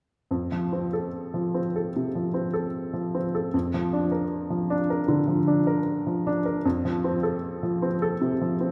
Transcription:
0.31 1.92 F2 soft
0.52 0.86 F3 soft
0.72 1.06 C4 soft
0.93 1.59 A4 soft
1.34 1.67 F3 soft
1.54 1.87 C4 soft
1.76 2.08 A4 soft
1.96 2.28 C3 soft
2.15 2.47 F3 soft
2.34 2.66 C4 soft
2.53 3.17 A4 soft
2.93 3.26 F3 soft
3.15 3.46 C4 soft
3.35 3.54 A4 soft
3.54 5.04 F2 soft
3.74 4.05 F3 soft
3.93 4.24 D4 soft
4.12 4.73 A#4 soft
4.50 4.81 F3 soft
4.70 5.00 D4 soft
4.90 5.20 A#4 soft
5.08 5.39 D3 soft
5.28 5.59 F3 soft
5.47 5.78 D4 soft
5.67 6.29 A#4 soft
6.07 6.37 F3 soft
6.27 6.57 D4 soft
6.46 6.65 A#4 soft
6.65 8.18 F2 soft
6.85 7.16 F3 soft
7.04 7.35 C4 soft
7.23 7.86 A4 soft
7.63 7.94 F3 soft
7.82 8.14 C4 soft
8.02 8.33 A4 soft
8.21 8.53 C3 soft
8.41 8.71 F3 soft
8.60 8.71 C4 soft

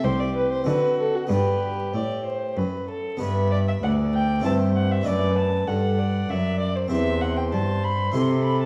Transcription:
0.00 0.61 A3 soft
0.00 0.62 C4 soft
0.00 0.63 E4 soft
0.04 0.63 C2 medium
0.04 0.63 C2 soft
0.04 0.66 G4 medium
0.04 0.21 C5 medium
0.20 0.35 D5 medium
0.36 0.51 B4 medium
0.52 0.67 C5 medium
0.64 1.26 D3 medium
0.64 1.26 D3 soft
0.64 1.27 C4 soft
0.64 1.27 D4 soft
0.64 1.29 F#4 medium
0.68 0.98 B4 medium
1.00 1.16 A4 medium
1.15 1.30 F#4 medium
1.27 1.90 G2 medium
1.27 1.90 G2 soft
1.27 3.15 B3 soft
1.27 3.16 D4 soft
1.27 2.55 G4 medium
1.27 1.86 B4 medium
1.94 2.53 A2 medium
1.94 2.53 A2 soft
1.94 2.24 D5 medium
2.25 2.59 C5 medium
2.57 3.16 F#2 soft
2.57 3.16 F#2 medium
2.57 2.89 B4 medium
2.90 3.20 A4 medium
3.17 3.78 G2 soft
3.17 3.79 G2 medium
3.17 4.39 B3 soft
3.17 4.40 G4 soft
3.21 3.50 B4 medium
3.21 3.85 E5 medium
3.52 3.58 D5 medium
3.68 3.74 E5 medium
3.83 4.46 D2 medium
3.83 4.41 D2 medium
3.83 4.47 D5 medium
3.83 3.91 F#5 medium
4.14 4.44 G5 medium
4.40 5.00 A3 soft
4.40 5.03 C4 soft
4.40 5.03 E4 soft
4.44 5.02 G2 soft
4.44 5.06 G2 medium
4.44 5.05 C5 medium
4.44 4.53 A5 medium
4.76 4.93 F#5 medium
4.91 5.08 E5 medium
5.01 5.64 A3 soft
5.01 6.86 D4 soft
5.01 6.87 F#4 soft
5.06 5.64 F#2 soft
5.06 5.67 F#2 medium
5.06 5.67 B4 medium
5.06 5.37 D5 medium
5.38 5.69 A5 medium
5.68 6.25 G2 soft
5.68 6.29 G2 medium
5.68 6.00 A4 medium
5.68 6.31 F#5 medium
5.99 6.91 D5 medium
6.29 6.87 F#2 soft
6.29 6.90 F#2 medium
6.29 6.59 E5 medium
6.60 6.77 D5 medium
6.76 6.90 C5 medium
6.88 7.49 E2 soft
6.88 7.54 E2 medium
6.88 8.09 C4 soft
6.88 8.10 G4 soft
6.88 8.16 C5 medium
6.88 7.23 E5 medium
7.21 7.37 F#5 medium
7.37 7.43 G5 medium
7.53 8.10 G2 soft
7.53 8.14 G2 medium
7.53 7.85 A5 medium
7.83 8.13 B5 medium
8.12 8.66 C3 medium
8.12 8.66 E4 soft
8.12 8.66 G4 soft
8.12 8.66 A4 medium
8.12 8.44 C6 medium
8.45 8.60 B5 medium
8.62 8.66 A5 medium

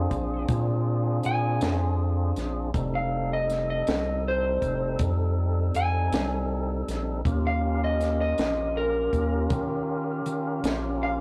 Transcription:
0.00 2.70 C4 medium
0.00 2.70 D4 medium
0.00 2.70 F4 medium
0.00 2.70 G#4 medium
0.00 0.46 D5 loud
0.11 0.46 A#1 medium
0.11 kick medium
0.11 closed hi-hat soft
0.48 1.20 A#2 loud
0.48 kick loud
0.48 closed hi-hat medium
1.23 1.59 A#2 medium
1.23 2.90 G#5 medium
1.23 closed hi-hat soft
1.61 2.33 F2 medium
1.61 snare loud
1.61 closed hi-hat medium
2.36 2.72 A#1 medium
2.36 snare soft
2.36 closed hi-hat soft
2.74 3.83 F1 loud
2.74 7.21 G3 medium
2.74 7.21 C4 medium
2.74 7.21 D#4 medium
2.74 7.21 A4 medium
2.74 kick loud
2.74 closed hi-hat medium
2.95 3.31 F5 medium
3.33 3.69 D#5 medium
3.50 snare soft
3.50 closed hi-hat medium
3.70 4.24 D#5 medium
3.87 4.59 C2 medium
3.87 snare loud
3.87 closed hi-hat medium
4.28 5.00 C5 medium
4.62 4.97 F1 medium
4.62 kick medium
4.62 closed hi-hat medium
4.99 5.71 F2 medium
4.99 kick loud
4.99 closed hi-hat medium
5.75 6.10 F2 medium
5.75 7.41 G#5 medium
5.75 closed hi-hat medium
6.12 6.84 C2 medium
6.12 snare medium
6.12 closed hi-hat medium
6.88 7.23 A#1 loud
6.88 snare soft
6.88 closed hi-hat soft
7.25 8.34 D#2 loud
7.25 11.21 C#4 medium
7.25 11.21 F4 medium
7.25 11.21 G4 medium
7.25 11.21 A#4 medium
7.25 kick loud
7.25 closed hi-hat medium
7.47 7.82 F5 medium
7.84 8.20 D#5 medium
8.01 snare soft
8.01 closed hi-hat medium
8.21 8.75 D#5 medium
8.38 9.09 A#1 medium
8.38 snare loud
8.38 closed hi-hat medium
8.77 9.49 A#4 medium
9.13 9.48 D#2 medium
9.13 kick medium
9.13 closed hi-hat medium
9.50 10.22 D#3 medium
9.50 kick loud
9.50 closed hi-hat medium
10.26 10.61 D#3 medium
10.26 closed hi-hat soft
10.63 11.21 A#1 medium
10.63 snare medium
10.63 closed hi-hat medium
11.03 11.21 F5 medium

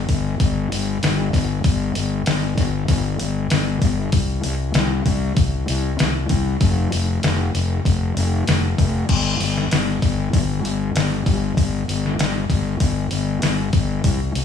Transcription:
0.09 0.34 G1 medium
0.09 kick medium
0.09 open hi-hat medium
0.40 0.65 G1 medium
0.40 kick loud
0.40 open hi-hat medium
0.72 0.97 G1 medium
0.72 open hi-hat medium
1.03 1.28 G1 loud
1.03 snare loud
1.03 open hi-hat medium
1.33 1.59 G1 loud
1.33 kick medium
1.33 open hi-hat medium
1.64 1.90 G1 medium
1.64 kick loud
1.64 open hi-hat medium
1.95 2.21 G1 medium
1.95 open hi-hat medium
2.26 2.52 G1 loud
2.26 snare loud
2.26 open hi-hat medium
2.58 2.83 G1 medium
2.58 kick medium
2.58 open hi-hat medium
2.88 3.14 G1 loud
2.88 kick loud
2.88 open hi-hat medium
3.19 3.46 G1 medium
3.19 open hi-hat medium
3.50 3.77 G1 loud
3.50 snare loud
3.50 open hi-hat medium
3.82 4.07 G1 loud
3.82 kick loud
3.82 open hi-hat medium
4.12 4.38 C2 loud
4.12 kick loud
4.12 open hi-hat medium
4.43 4.70 C2 medium
4.43 open hi-hat medium
4.74 5.00 C2 loud
4.74 snare loud
4.74 open hi-hat medium
5.05 5.31 C2 loud
5.05 kick medium
5.05 open hi-hat medium
5.37 5.62 C2 medium
5.37 kick loud
5.37 open hi-hat medium
5.68 5.94 C2 loud
5.68 open hi-hat medium
5.99 6.25 C2 loud
5.99 snare loud
5.99 open hi-hat medium
6.29 6.55 C2 loud
6.29 kick medium
6.29 open hi-hat medium
6.61 6.86 F1 loud
6.61 kick loud
6.61 open hi-hat medium
6.92 7.18 F1 medium
6.92 open hi-hat medium
7.23 7.49 F1 medium
7.23 snare loud
7.23 open hi-hat medium
7.55 7.80 F1 medium
7.55 open hi-hat medium
7.85 8.10 F1 medium
7.85 kick loud
7.85 open hi-hat medium
8.17 8.42 F1 loud
8.17 open hi-hat medium
8.47 8.73 F1 medium
8.47 snare loud
8.47 open hi-hat medium
8.78 9.04 F1 loud
8.78 kick medium
8.78 open hi-hat medium
9.09 9.34 G1 medium
9.09 kick loud
9.09 crash loud
9.40 9.65 G1 medium
9.40 open hi-hat medium
9.57 snare soft
9.71 9.97 G1 medium
9.71 snare loud
9.71 open hi-hat medium
10.02 10.27 G1 medium
10.02 kick medium
10.02 open hi-hat medium
10.33 10.58 G1 medium
10.33 kick loud
10.33 open hi-hat medium
10.64 10.89 G1 medium
10.64 open hi-hat medium
10.95 11.20 G1 medium
10.95 snare loud
10.95 open hi-hat medium
11.26 11.51 G1 medium
11.26 kick medium
11.26 open hi-hat medium
11.57 11.82 G1 loud
11.57 kick loud
11.57 open hi-hat medium
11.88 12.13 G1 medium
11.88 open hi-hat medium
12.06 snare soft
12.18 12.44 G1 medium
12.18 snare loud
12.18 open hi-hat medium
12.49 12.75 G1 medium
12.49 kick medium
12.49 open hi-hat medium
12.80 13.06 G1 loud
12.80 kick loud
12.80 open hi-hat medium
13.11 13.36 G1 medium
13.11 open hi-hat medium
13.42 13.68 G1 loud
13.42 snare loud
13.42 open hi-hat medium
13.73 13.99 G1 medium
13.73 kick medium
13.73 open hi-hat medium
14.04 14.29 C2 loud
14.04 kick loud
14.04 open hi-hat medium
14.35 14.45 C2 medium
14.35 open hi-hat medium

